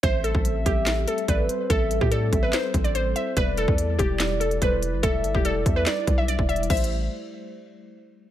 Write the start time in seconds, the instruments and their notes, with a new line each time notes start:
0.03 808-style bass A1, glass harmonica G3 C4 A4, synth pluck C5, soft synth lead E5, kick, closed hi-hat
0.24 synth pluck A4, closed hi-hat
0.35 808-style bass A1, kick
0.45 closed hi-hat
0.66 808-style bass A1, synth pluck G4, kick, closed hi-hat
0.86 snare, clap, closed hi-hat
1.08 synth pluck A4, closed hi-hat
1.18 closed hi-hat
1.28 808-style bass A1, synth pluck B4, soft synth lead D5, kick, closed hi-hat
1.49 soft synth lead C5, closed hi-hat
1.70 808-style bass A1, synth pluck A4, soft synth lead E5, kick, closed hi-hat
1.91 closed hi-hat
2.01 808-style bass A2, synth pluck G4, kick
2.12 synth pluck A4, soft synth lead D5, closed hi-hat
2.33 808-style bass A1, soft synth lead E5, kick, closed hi-hat
2.43 synth pluck B4
2.53 synth pluck C5, snare, clap, closed hi-hat
2.74 808-style bass A1, kick, closed hi-hat
2.84 synth pluck D5, closed hi-hat
2.95 synth pluck C5, closed hi-hat
3.16 soft synth lead C5, synth pluck E5, closed hi-hat
3.37 808-style bass E1, glass harmonica E4 D5, synth pluck B4, soft synth lead D5, kick, closed hi-hat
3.57 synth pluck A4, closed hi-hat
3.68 808-style bass E2, kick
3.78 closed hi-hat
3.99 808-style bass E1, synth pluck G4, kick, closed hi-hat
4.20 snare, clap, closed hi-hat
4.40 synth pluck A4, closed hi-hat
4.51 closed hi-hat
4.62 808-style bass E1, synth pluck B4, soft synth lead C5, kick, closed hi-hat
4.83 soft synth lead B4, closed hi-hat
4.93 808-style bass G1
5.03 808-style bass E1, synth pluck A4, soft synth lead E5, kick, closed hi-hat
5.24 808-style bass G1, closed hi-hat
5.34 808-style bass E1, synth pluck G4, kick
5.45 synth pluck A4, soft synth lead D5, closed hi-hat
5.66 808-style bass E2, soft synth lead E5, kick, closed hi-hat
5.76 synth pluck B4
5.86 synth pluck D5, snare, clap, closed hi-hat
6.07 808-style bass B1, kick, closed hi-hat
6.18 synth pluck E5
6.28 synth pluck D5, closed hi-hat
6.39 808-style bass E1, kick
6.49 soft synth lead D5, synth pluck E5, closed hi-hat
6.56 closed hi-hat
6.63 closed hi-hat
6.70 808-style bass A1, glass harmonica A3 G4 C5, soft synth lead C5, synth pluck E5, kick, closed hi-hat, crash
6.77 closed hi-hat
6.84 closed hi-hat